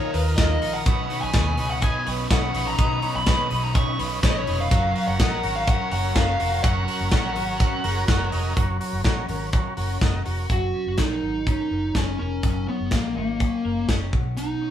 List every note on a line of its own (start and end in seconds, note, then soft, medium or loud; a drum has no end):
0.00 1.85 D#3 medium
0.00 0.14 A#3 medium
0.00 0.15 D#4 medium
0.00 0.11 F4 medium
0.00 0.14 F4 medium
0.00 0.61 F4 medium
0.00 0.11 A#4 medium
0.00 0.12 A#4 medium
0.00 0.13 A#4 medium
0.00 0.14 C#5 medium
0.00 0.11 D#5 medium
0.13 0.35 D#2 loud
0.13 0.38 D#4 soft
0.13 0.35 F4 medium
0.13 0.38 F4 soft
0.13 0.35 A#4 medium
0.13 0.38 A#4 medium
0.13 0.20 B4 medium
0.13 0.35 D#5 medium
0.13 open hi-hat medium
0.36 0.62 D#2 medium
0.36 0.62 D#3 medium
0.36 0.63 A#3 medium
0.36 0.63 D#4 medium
0.36 0.59 F4 medium
0.36 0.62 F4 medium
0.36 0.59 A#4 medium
0.36 0.61 A#4 medium
0.36 0.75 D#5 medium
0.36 0.59 D#5 loud
0.36 kick loud
0.36 snare loud
0.36 hi-hat pedal medium
0.36 ride medium
0.61 0.83 A#1 medium
0.61 0.87 D#4 soft
0.61 0.83 F4 medium
0.61 0.87 F4 medium
0.61 0.83 A#4 medium
0.61 0.86 A#4 medium
0.61 0.83 D#5 medium
0.61 open hi-hat medium
0.73 0.91 F4 soft
0.73 1.21 F#5 medium
0.86 1.07 B1 medium
0.86 1.11 B2 medium
0.86 1.11 D#3 medium
0.86 1.11 F#3 medium
0.86 1.11 C#4 medium
0.86 1.07 D#4 medium
0.86 1.10 D#4 medium
0.86 1.07 B4 medium
0.86 1.09 B4 medium
0.86 1.07 C#5 medium
0.86 kick loud
0.86 hi-hat pedal medium
0.86 ride medium
1.09 1.35 F#3 soft
1.09 1.35 C#4 medium
1.09 1.31 D#4 medium
1.09 1.35 D#4 medium
1.09 1.31 B4 medium
1.09 1.34 B4 medium
1.09 1.31 C#5 medium
1.09 open hi-hat medium
1.21 1.33 B1 medium
1.21 1.70 G#5 medium
1.33 1.55 D#2 medium
1.33 1.59 B2 medium
1.33 1.59 D#3 medium
1.33 1.59 F#3 medium
1.33 1.58 C#4 medium
1.33 1.55 D#4 medium
1.33 1.58 D#4 medium
1.33 1.55 B4 medium
1.33 1.57 B4 medium
1.33 1.55 C#5 loud
1.33 kick loud
1.33 snare loud
1.33 hi-hat pedal medium
1.33 ride medium
1.57 1.80 F#3 soft
1.57 1.80 C#4 soft
1.57 1.79 D#4 medium
1.57 1.81 D#4 soft
1.57 1.82 B4 medium
1.57 1.79 B4 medium
1.57 1.79 C#5 medium
1.57 open hi-hat medium
1.71 1.82 F#5 medium
1.81 2.06 F#3 medium
1.81 2.06 C#4 medium
1.81 2.06 D#4 medium
1.81 2.03 D#4 medium
1.81 2.03 B4 medium
1.81 2.05 B4 medium
1.81 2.03 D#5 medium
1.81 2.06 G#5 medium
1.81 kick loud
1.81 hi-hat pedal medium
1.81 ride medium
2.06 2.27 B1 loud
2.06 2.30 F#3 soft
2.06 2.30 C#4 medium
2.06 2.27 D#4 medium
2.06 2.30 D#4 medium
2.06 2.30 B4 medium
2.06 2.27 B4 medium
2.06 2.27 C#5 medium
2.06 open hi-hat medium
2.30 2.51 B1 medium
2.30 2.54 B2 medium
2.30 2.55 D#3 medium
2.30 2.55 F#3 medium
2.30 2.54 C#4 medium
2.30 2.51 D#4 medium
2.30 2.53 D#4 medium
2.30 2.51 B4 medium
2.30 2.52 B4 medium
2.30 2.51 C#5 medium
2.30 2.65 F#5 medium
2.30 kick loud
2.30 snare loud
2.30 hi-hat pedal medium
2.30 ride medium
2.53 2.76 A#1 medium
2.53 2.78 F#3 soft
2.53 2.78 C#4 soft
2.53 2.75 D#4 medium
2.53 2.79 D#4 medium
2.53 2.78 B4 medium
2.53 2.76 B4 medium
2.53 2.75 C#5 medium
2.53 open hi-hat medium
2.67 3.16 A#5 loud
2.78 2.99 B1 loud
2.78 3.03 B2 medium
2.78 3.03 D#3 medium
2.78 3.03 F#3 medium
2.78 3.03 C#4 medium
2.78 2.99 D#4 medium
2.78 3.03 D#4 medium
2.78 2.99 B4 medium
2.78 3.02 B4 medium
2.78 2.99 D#5 loud
2.78 kick loud
2.78 hi-hat pedal medium
2.78 ride medium
3.02 3.26 F#3 soft
3.02 3.27 C#4 medium
3.02 3.24 D#4 medium
3.02 3.27 D#4 medium
3.02 3.24 B4 medium
3.02 3.27 B4 medium
3.02 3.24 C#5 medium
3.02 open hi-hat medium
3.15 3.36 B1 medium
3.15 3.63 B5 loud
3.26 3.51 B2 medium
3.26 3.51 D#3 medium
3.26 3.51 F#3 medium
3.26 3.52 C#4 medium
3.26 3.48 D#4 medium
3.26 3.51 D#4 medium
3.26 3.48 B4 medium
3.26 3.50 B4 medium
3.26 3.48 C#5 loud
3.26 kick loud
3.26 snare loud
3.26 hi-hat pedal medium
3.26 ride medium
3.50 3.82 B1 loud
3.50 3.73 F#3 soft
3.50 3.74 C#4 soft
3.50 3.72 D#4 medium
3.50 3.74 D#4 soft
3.50 3.75 B4 soft
3.50 3.72 B4 medium
3.50 3.72 C#5 medium
3.50 open hi-hat medium
3.64 3.75 A#5 medium
3.74 3.99 F#3 medium
3.74 3.99 C#4 medium
3.74 3.96 D#4 medium
3.74 3.98 D#4 medium
3.74 3.96 B4 medium
3.74 3.98 B4 medium
3.74 3.96 C#5 medium
3.74 3.98 C#6 medium
3.74 kick loud
3.74 hi-hat pedal medium
3.74 ride medium
3.99 4.20 B1 medium
3.99 4.22 F#3 soft
3.99 4.23 C#4 soft
3.99 4.20 D#4 medium
3.99 4.23 D#4 soft
3.99 4.23 B4 medium
3.99 4.20 B4 medium
3.99 4.20 C#5 medium
3.99 open hi-hat medium
4.22 4.44 A#1 medium
4.22 4.47 B2 medium
4.22 4.47 D#3 medium
4.22 4.47 F#3 medium
4.22 4.47 C#4 medium
4.22 4.44 D#4 medium
4.22 4.47 D#4 medium
4.22 4.44 B4 medium
4.22 4.46 B4 medium
4.22 4.44 C#5 loud
4.22 4.30 C#5 medium
4.22 kick loud
4.22 snare loud
4.22 hi-hat pedal medium
4.22 ride medium
4.30 4.37 D#5 medium
4.38 4.58 C#5 medium
4.47 4.68 F1 medium
4.47 4.69 F#3 medium
4.47 4.70 C#4 medium
4.47 4.68 D#4 medium
4.47 4.71 D#4 medium
4.47 4.71 B4 medium
4.47 4.68 B4 medium
4.47 4.68 C#5 medium
4.47 open hi-hat medium
4.61 5.07 F5 loud
4.71 4.92 F#1 loud
4.71 4.95 F#3 medium
4.71 4.95 C#4 medium
4.71 4.92 F#4 medium
4.71 4.94 F#4 medium
4.71 4.92 A#4 medium
4.71 4.93 A#4 medium
4.71 4.92 C#5 medium
4.71 kick loud
4.71 hi-hat pedal medium
4.71 ride medium
4.94 5.19 C#4 soft
4.94 5.16 F#4 medium
4.94 5.19 F#4 soft
4.94 5.19 A#4 medium
4.94 5.16 A#4 medium
4.94 5.16 C#5 medium
4.94 open hi-hat medium
5.07 5.18 F#1 medium
5.07 5.56 F#5 loud
5.19 5.40 A#1 medium
5.19 5.43 F#3 medium
5.19 5.44 C#4 medium
5.19 5.40 F#4 loud
5.19 5.44 F#4 medium
5.19 5.40 A#4 medium
5.19 5.43 A#4 medium
5.19 5.40 D#5 loud
5.19 kick loud
5.19 snare loud
5.19 hi-hat pedal medium
5.19 ride medium
5.43 5.74 G#1 medium
5.43 5.68 C#4 soft
5.43 5.64 F#4 medium
5.43 5.68 F#4 soft
5.43 5.64 A#4 medium
5.43 5.68 A#4 medium
5.43 5.64 C#5 medium
5.43 open hi-hat medium
5.56 5.68 F5 medium
5.67 5.92 F#3 medium
5.67 5.92 C#4 medium
5.67 5.88 F#4 medium
5.67 5.92 F#4 medium
5.67 5.88 A#4 medium
5.67 5.90 A#4 medium
5.67 5.88 C#5 medium
5.67 5.91 F#5 loud
5.67 kick loud
5.67 hi-hat pedal medium
5.67 ride medium
5.91 6.12 F#1 loud
5.91 6.16 C#4 soft
5.91 6.12 F#4 medium
5.91 6.16 F#4 soft
5.91 6.12 A#4 medium
5.91 6.16 A#4 medium
5.91 6.12 C#5 medium
5.91 6.16 F#5 loud
5.91 open hi-hat medium
6.15 6.36 F#1 loud
6.15 6.40 F#3 medium
6.15 6.40 C#4 medium
6.15 6.36 F#4 medium
6.15 6.40 F#4 medium
6.15 6.36 A#4 medium
6.15 6.39 A#4 medium
6.15 6.36 C#5 loud
6.15 6.63 F5 medium
6.15 kick loud
6.15 snare loud
6.15 hi-hat pedal medium
6.15 ride medium
6.39 6.61 F1 medium
6.39 6.63 C#4 soft
6.39 6.60 F#4 medium
6.39 6.64 F#4 medium
6.39 6.60 A#4 medium
6.39 6.64 A#4 medium
6.39 6.61 C#5 medium
6.39 open hi-hat medium
6.63 6.84 F#1 loud
6.63 6.88 F#3 medium
6.63 6.88 C#4 medium
6.63 6.84 F#4 medium
6.63 6.88 F#4 medium
6.63 6.85 A#4 medium
6.63 6.87 A#4 medium
6.63 6.85 C#5 loud
6.63 8.04 F#5 loud
6.63 kick loud
6.63 hi-hat pedal medium
6.63 ride medium
6.87 7.12 C#4 soft
6.87 7.08 F#4 medium
6.87 7.12 F#4 medium
6.87 7.09 A#4 medium
6.87 7.12 A#4 medium
6.87 7.09 C#5 medium
6.87 open hi-hat medium
7.00 7.11 F#1 medium
7.11 7.36 F#3 medium
7.11 7.37 C#4 medium
7.11 7.33 F#4 loud
7.11 7.37 F#4 medium
7.11 7.33 A#4 medium
7.11 7.35 A#4 medium
7.11 7.33 C#5 loud
7.11 kick loud
7.11 snare loud
7.11 hi-hat pedal medium
7.11 ride medium
7.36 7.67 G#1 medium
7.36 7.60 C#4 soft
7.36 7.57 F#4 medium
7.36 7.61 F#4 medium
7.36 7.57 A#4 medium
7.36 7.60 A#4 medium
7.36 7.57 C#5 medium
7.36 open hi-hat medium
7.60 7.85 F#3 medium
7.60 7.85 C#4 medium
7.60 7.81 F#4 medium
7.60 7.84 F#4 medium
7.60 7.81 A#4 medium
7.60 7.83 A#4 medium
7.60 7.81 C#5 medium
7.60 kick loud
7.60 hi-hat pedal medium
7.60 ride medium
7.83 8.05 F#1 loud
7.83 8.08 C#4 medium
7.83 8.05 F#4 medium
7.83 8.08 F#4 medium
7.83 7.97 G#4 medium
7.83 8.05 A#4 medium
7.83 8.08 A#4 medium
7.83 8.05 C#5 loud
7.83 8.06 A#5 medium
7.83 open hi-hat medium
7.97 8.62 A#4 medium
8.08 8.33 F#3 medium
8.08 8.33 C#4 medium
8.08 8.29 F#4 medium
8.08 8.33 F#4 loud
8.08 8.29 A#4 medium
8.08 8.31 A#4 loud
8.08 8.29 C#5 loud
8.08 8.31 F#5 medium
8.08 kick loud
8.08 snare loud
8.08 hi-hat pedal medium
8.08 ride medium
8.32 8.53 F1 medium
8.32 8.58 C#4 medium
8.32 8.53 F#4 medium
8.32 8.57 F#4 medium
8.32 8.53 A#4 medium
8.32 8.57 A#4 medium
8.32 8.53 C#5 medium
8.32 8.55 D#5 medium
8.32 open hi-hat medium
8.56 8.77 F#1 loud
8.56 10.49 F#3 medium
8.56 8.77 F#4 medium
8.56 8.77 A#4 loud
8.56 8.78 C#5 loud
8.56 kick loud
8.56 closed hi-hat medium
8.80 9.01 F#4 medium
8.80 9.77 F#4 medium
8.80 9.02 A#4 medium
8.80 9.02 C#5 medium
8.80 open hi-hat medium
8.93 9.05 F#1 medium
9.04 9.26 A#1 loud
9.04 9.53 C#4 medium
9.04 9.26 F#4 loud
9.04 9.26 A#4 loud
9.04 9.26 C#5 loud
9.04 kick loud
9.04 snare loud
9.04 closed hi-hat medium
9.29 9.60 G#1 medium
9.29 9.50 F#4 medium
9.29 10.01 A#4 medium
9.29 9.50 A#4 medium
9.29 9.50 C#5 medium
9.29 open hi-hat medium
9.53 10.73 C#4 medium
9.53 9.74 F#4 medium
9.53 9.74 A#4 medium
9.53 9.74 C#5 medium
9.53 kick loud
9.53 closed hi-hat medium
9.77 9.98 F#1 medium
9.77 9.98 F#4 medium
9.77 10.25 F#4 medium
9.77 9.98 A#4 medium
9.77 9.98 C#5 medium
9.77 open hi-hat medium
10.01 10.22 F#1 medium
10.01 10.22 F#4 medium
10.01 10.98 A#4 medium
10.01 10.23 A#4 medium
10.01 10.23 D#5 medium
10.01 kick loud
10.01 snare loud
10.01 closed hi-hat medium
10.25 10.46 F1 medium
10.25 10.46 F#4 medium
10.25 11.22 F#4 medium
10.25 10.46 A#4 medium
10.25 10.46 C#5 medium
10.25 open hi-hat medium
10.50 10.70 F#1 medium
10.50 12.43 F#3 medium
10.50 11.00 F#4 medium
10.50 kick loud
10.50 closed hi-hat medium
10.74 11.46 C#4 soft
10.86 10.97 F#1 medium
10.98 11.19 A#1 medium
10.98 11.46 D#4 medium
10.98 11.70 A#4 medium
10.98 kick loud
10.98 snare loud
10.98 closed hi-hat medium
11.23 11.54 G#1 medium
11.23 13.16 D#4 soft
11.47 11.95 C#4 medium
11.47 11.97 D#4 medium
11.47 kick loud
11.47 closed hi-hat medium
11.71 11.91 F#1 medium
11.71 12.18 A#4 medium
11.95 12.16 F#1 medium
11.95 12.68 C#4 medium
11.95 12.18 C#4 medium
11.95 kick medium
11.95 snare loud
11.95 closed hi-hat medium
12.19 12.40 F1 medium
12.19 12.68 C#4 medium
12.19 12.91 A#4 medium
12.43 12.64 F#1 medium
12.43 14.71 F#3 medium
12.43 kick loud
12.43 closed hi-hat medium
12.68 12.91 B3 medium
12.68 13.40 C#4 soft
12.80 12.90 F#1 medium
12.91 13.13 A#1 medium
12.91 13.15 A#3 medium
12.91 13.64 A#4 medium
12.91 kick loud
12.91 snare loud
12.91 closed hi-hat medium
13.16 13.47 G#1 medium
13.16 13.85 A#3 medium
13.16 14.64 D#4 medium
13.40 13.88 C#4 medium
13.40 kick loud
13.40 closed hi-hat medium
13.65 13.85 F#1 medium
13.65 14.18 A#4 medium
13.89 14.40 C#4 medium
13.89 kick medium
13.89 snare loud
13.89 closed hi-hat medium
14.13 14.54 B1 medium
14.13 14.36 B2 medium
14.13 kick loud
14.37 14.71 B2 medium
14.37 14.71 D#4 medium
14.37 closed hi-hat medium
14.61 14.71 C#4 soft